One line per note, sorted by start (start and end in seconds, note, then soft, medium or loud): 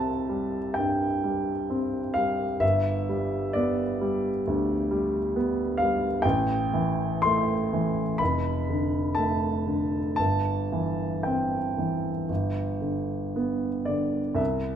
0.00 0.73 C2 soft
0.00 0.29 G3 soft
0.00 0.58 C4 soft
0.00 2.60 E5 soft
0.00 0.75 A5 medium
0.29 1.05 G3 soft
0.74 1.52 G2 soft
0.74 2.15 G5 soft
1.24 1.98 G3 soft
1.70 2.44 C4 soft
2.14 2.62 G3 soft
2.14 2.61 F5 medium
2.60 4.40 G1 soft
2.60 3.53 E5 medium
3.09 3.82 G3 soft
3.53 4.28 B3 soft
3.53 5.34 D5 medium
4.01 4.73 G3 soft
4.47 5.18 D2 soft
4.91 5.61 G3 soft
5.36 6.06 B3 soft
5.78 6.24 G3 soft
5.78 6.23 F5 medium
6.22 8.17 A1 medium
6.22 7.23 G5 medium
6.73 7.53 E3 soft
7.22 8.02 A3 soft
7.22 8.19 C6 medium
7.73 8.20 E3 soft
8.18 10.15 F1 soft
8.18 9.16 B5 medium
8.70 9.47 D3 soft
9.15 9.97 A3 soft
9.15 10.15 A5 medium
9.67 10.18 D3 soft
10.16 12.26 G1 soft
10.16 11.24 A5 medium
10.72 11.57 E3 soft
11.23 12.09 C4 soft
11.23 13.34 G5 soft
11.78 12.29 E3 soft
12.29 14.35 G1 soft
12.81 13.67 D3 soft
13.36 14.19 B3 soft
13.85 14.39 D3 soft
13.85 14.38 D5 soft
14.35 14.76 C2 soft
14.35 14.76 E5 medium